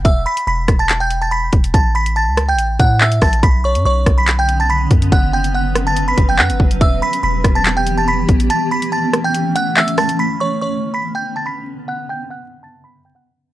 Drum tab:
HH |x--x--x-x-x---xx|x--x--x-x-x--xox|x--x--x-x-x---xx|x--x--x-x-x--x-x|
CP |--------x-------|------------x---|--------x-------|------------x---|
SD |------r---------|------r-------r-|------r---------|------r---------|
BD |o-----o-------o-|o---------o---o-|o-----o-------o-|o---------o---o-|

HH |x--x--x-x-x---xx|x--x--x-x-x--xox|----------------|----------------|
CP |--------x-------|------------x---|----------------|----------------|
SD |------r---------|------r-------r-|----------------|----------------|
BD |o-----o-------o-|----------------|----------------|----------------|